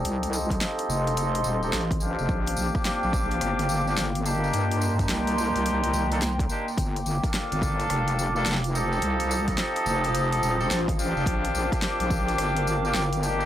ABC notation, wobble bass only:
X:1
M:4/4
L:1/16
Q:"Swing 16ths" 1/4=107
K:Fmix
V:1 name="Wobble bass" clef=bass
C,,4 z2 F,,,4 E,,,2 A,,,3 F,,, | B,,,2 B,,, z2 B,,,3 G,,,4 G,,,4 | G,,4 C,,3 C,,3 C,,4 z2 | G,,,2 G,,, z2 G,,,3 F,,,4 F,,,4 |
C,,4 z2 F,,,4 E,,,2 A,,,3 F,,, | B,,,2 B,,, z2 B,,,3 G,,,4 G,,,4 |]